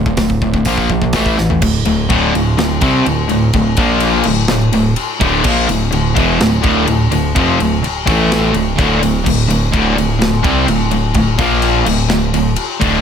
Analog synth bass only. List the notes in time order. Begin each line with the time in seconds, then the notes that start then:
Already playing: D1
0.18 D1
0.42 D1
0.66 A#1
0.90 A#1
1.14 A1
1.39 A1
1.62 D1
1.86 D1
2.10 D1
2.36 D1
2.59 D1
2.82 C2
3.06 D1
3.31 D1
3.54 D1
3.78 A#1
4.26 D1
4.50 D1
4.74 D1
5.21 D1
5.45 A#1
5.70 D1
5.92 D1
6.17 E1
6.41 D1
6.64 D1
6.89 D1
7.12 D1
7.36 F1
7.61 D1
7.84 D1
8.08 A1
8.54 D1
8.79 D1
9.01 D1
9.27 D1
9.49 D1
9.74 D1
9.97 D1
10.20 D1
10.45 C2
10.68 D1
10.92 D1
11.15 D1
11.39 A#1
11.86 D1
12.10 D1
12.34 D1
12.82 D1